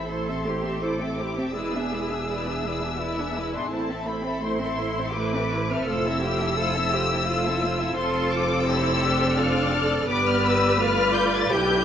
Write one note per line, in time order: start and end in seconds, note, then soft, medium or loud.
0.00 1.51 A1 medium
0.00 0.10 C4 soft
0.00 0.10 B5 medium
0.09 0.27 A3 soft
0.09 0.26 E4 soft
0.09 0.45 A4 medium
0.09 0.27 C5 soft
0.09 0.81 C6 medium
0.27 0.46 C4 soft
0.27 0.46 A4 soft
0.27 0.45 E5 soft
0.45 0.63 A3 soft
0.45 0.63 E4 soft
0.45 0.81 G4 soft
0.45 0.64 C5 soft
0.64 0.81 C4 soft
0.64 0.82 A4 soft
0.64 0.82 E5 soft
0.81 0.98 A3 soft
0.81 0.98 E4 soft
0.81 1.17 A4 soft
0.81 0.98 C5 soft
0.81 1.56 D6 medium
0.99 1.17 C4 soft
0.99 1.17 A4 soft
0.99 1.17 E5 soft
1.17 1.36 A3 soft
1.17 1.36 E4 soft
1.17 1.54 G4 medium
1.17 1.36 C5 soft
1.36 1.54 C4 soft
1.36 1.55 A4 soft
1.36 1.55 E5 soft
1.54 3.67 E1 medium
1.54 1.72 G#3 soft
1.54 1.72 E4 soft
1.54 2.96 G#4 medium
1.54 1.72 B4 soft
1.54 1.72 D5 soft
1.54 3.49 E6 medium
1.73 1.92 B3 soft
1.73 1.92 D4 soft
1.73 1.92 G#4 soft
1.73 1.92 E5 soft
1.92 2.10 G#3 soft
1.92 2.10 E4 soft
1.92 2.10 B4 soft
1.92 2.10 D5 soft
2.09 2.27 B3 soft
2.09 2.28 D4 soft
2.09 2.28 G#4 soft
2.09 2.28 E5 soft
2.28 2.45 G#3 soft
2.28 2.44 E4 soft
2.28 2.45 B4 soft
2.28 2.45 D5 soft
2.45 2.64 B3 soft
2.45 2.63 D4 soft
2.45 2.64 G#4 soft
2.45 2.64 E5 soft
2.63 2.81 G#3 soft
2.63 2.81 E4 soft
2.63 2.82 B4 soft
2.63 2.82 D5 soft
2.81 2.99 B3 soft
2.81 2.99 D4 soft
2.81 2.99 G#4 soft
2.81 2.99 E5 soft
2.99 3.16 G#3 soft
2.99 3.71 E4 medium
2.99 3.16 E4 soft
2.99 3.16 B4 soft
2.99 3.16 D5 soft
3.16 3.35 B3 soft
3.16 3.35 D4 soft
3.16 3.35 G#4 soft
3.16 3.35 E5 soft
3.35 3.53 G#3 soft
3.35 3.53 E4 soft
3.35 3.54 B4 soft
3.35 3.54 D5 soft
3.53 3.71 B3 soft
3.53 3.71 D4 soft
3.53 3.72 G#4 soft
3.53 3.72 E5 soft
3.53 3.72 C6 medium
3.70 5.83 A1 medium
3.70 3.88 A3 soft
3.70 4.41 C4 soft
3.70 3.87 E4 soft
3.70 3.89 C5 soft
3.70 4.06 A5 medium
3.88 4.07 C4 soft
3.88 4.07 A4 soft
3.88 4.08 E5 soft
4.06 4.25 A3 soft
4.06 4.25 E4 soft
4.06 4.26 C5 soft
4.06 4.43 B5 medium
4.23 4.42 C4 soft
4.23 4.44 A4 soft
4.23 4.44 E5 soft
4.41 4.59 A3 soft
4.41 4.59 E4 soft
4.41 5.15 E4 medium
4.41 4.61 C5 medium
4.41 5.15 C6 medium
4.59 4.78 C4 soft
4.59 4.80 A4 soft
4.59 4.80 E5 soft
4.78 4.97 A3 soft
4.78 4.97 E4 soft
4.78 4.98 C5 soft
4.98 5.16 C4 soft
4.98 5.16 A4 soft
4.98 5.16 E5 soft
5.14 5.32 A3 medium
5.14 5.32 E4 medium
5.14 5.86 B4 medium
5.14 5.31 C5 soft
5.14 5.68 D6 medium
5.34 5.52 C4 soft
5.34 5.52 A4 soft
5.34 5.52 E5 soft
5.52 5.70 A3 soft
5.52 5.70 E4 soft
5.52 5.70 C5 soft
5.70 5.87 C4 medium
5.70 5.87 A4 soft
5.70 5.88 E5 soft
5.70 5.88 F6 medium
5.85 7.93 F1 medium
5.85 6.04 A3 medium
5.85 6.04 E4 medium
5.85 6.04 F4 medium
5.85 6.21 A4 medium
5.85 6.04 C5 medium
5.85 7.97 E6 loud
6.05 6.22 C4 soft
6.05 6.22 E4 soft
6.05 6.22 A4 soft
6.05 6.22 E5 soft
6.21 6.40 A3 medium
6.21 6.39 E4 medium
6.21 6.40 F4 medium
6.21 6.56 G4 medium
6.21 6.39 C5 medium
6.39 6.57 C4 soft
6.39 6.58 E4 soft
6.39 6.57 A4 soft
6.39 6.57 E5 soft
6.56 6.74 A3 medium
6.56 6.73 E4 medium
6.56 6.74 F4 medium
6.56 6.92 A4 medium
6.56 6.73 C5 medium
6.73 6.93 C4 medium
6.73 6.93 E4 medium
6.73 6.91 A4 medium
6.73 6.92 E5 medium
6.91 7.10 A3 soft
6.91 7.09 E4 medium
6.91 7.10 F4 medium
6.91 7.27 G4 medium
6.91 7.09 C5 medium
7.10 7.28 C4 medium
7.10 7.28 E4 medium
7.10 7.28 A4 medium
7.10 7.27 E5 medium
7.26 7.44 A3 medium
7.26 7.43 E4 medium
7.26 7.98 F4 medium
7.26 7.44 F4 medium
7.26 7.43 C5 medium
7.45 7.63 C4 medium
7.45 7.63 E4 soft
7.45 7.62 A4 soft
7.45 7.63 E5 soft
7.62 7.80 A3 medium
7.62 7.80 E4 soft
7.62 7.80 F4 medium
7.62 7.80 C5 medium
7.79 7.96 C4 medium
7.79 7.98 E4 medium
7.79 7.93 A4 soft
7.79 7.97 E5 medium
7.94 10.04 F1 medium
7.94 10.04 C4 medium
7.94 8.63 F4 medium
7.94 8.62 A4 medium
7.94 8.66 A4 medium
7.94 9.32 C5 medium
7.94 8.32 C6 medium
8.33 8.68 D6 medium
8.66 9.02 E4 medium
8.66 9.37 G4 medium
8.66 10.05 A4 medium
8.66 9.38 E6 loud
9.03 10.08 D4 medium
9.36 9.72 F4 medium
9.36 10.05 D5 medium
9.36 10.08 F6 loud
9.71 10.07 A4 medium
10.06 11.53 G1 medium
10.06 10.79 B3 medium
10.06 10.79 G4 medium
10.06 10.77 B4 medium
10.06 11.50 B4 medium
10.06 10.78 D5 medium
10.06 10.26 D6 loud
10.26 10.44 F6 loud
10.45 10.81 E6 loud
10.80 11.54 A3 medium
10.80 11.54 F4 medium
10.80 11.52 B4 medium
10.80 11.52 D5 medium
10.80 11.18 F6 loud
11.15 11.34 G6 medium
11.36 11.54 A6 loud
11.53 11.85 B1 medium
11.53 11.85 D4 medium
11.53 11.85 E4 medium
11.53 11.85 G4 medium
11.53 11.85 B4 medium
11.53 11.85 G6 loud